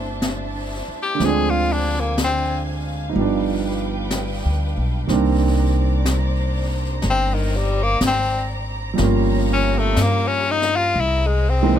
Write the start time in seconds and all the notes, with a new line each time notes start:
Already playing: G1 E3 G3 A3 C4 D4 E4 C5 E5 A5
0.22 brush sweep, snare, hi-hat pedal
0.88 muted upright bass stroke
1.03 G4
1.15 D3 F3
1.20 D2 G#3 C4 F5 G#5, brush sweep, snare
1.25 D4 G#4
1.50 F4
1.73 D4
2.00 A#3
2.18 brush sweep, snare, hi-hat pedal
2.24 C4
3.09 F3 D#4
3.15 G1 G3 B3 B4 G5, brush sweep
3.21 D4
4.11 brush sweep, snare, hi-hat pedal
4.45 D2
4.77 B1
5.07 C2 D#3 G3 A#3 C4 A#5, brush sweep, snare
5.11 D4 C5 D5
6.05 brush sweep, snare, hi-hat pedal
7.02 G1 D5, brush sweep, snare
7.10 C4
7.34 D#3
7.57 G3
7.83 A#3
8.01 G#1, brush sweep, snare, hi-hat pedal
8.07 C4
8.94 F3 G3
8.98 G1 A#3 G4 C#5 F5, brush sweep, snare
9.02 C#4 F4
9.53 C#4
9.79 A3
9.96 G2, brush sweep, snare, hi-hat pedal
10.02 A#3
10.28 C#4
10.51 D#4
10.62 snare
10.76 F4
10.95 C2 G#4 C5 D#5, brush sweep
11.00 E4
11.27 G#3
11.50 C4
11.63 E3 G#3 A#3 C4 D#4